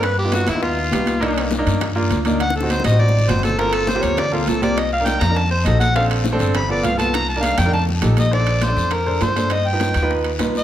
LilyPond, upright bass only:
\new Staff \with { instrumentName = "Upright bass" } { \clef bass \time 4/4 \key bes \major \tempo 4 = 203 g,4. dis,4. c,4~ | c,4. g,4. d,4~ | d,4. a,,4. g,,4~ | g,,4. d,4. c,4~ |
c,4. f,4. bes,,4~ | bes,,4. g,,4. c,4~ | c,4. f,4. bes,,4~ | bes,,4. f,4. g,4~ |
g,4. dis,4. c,4 | }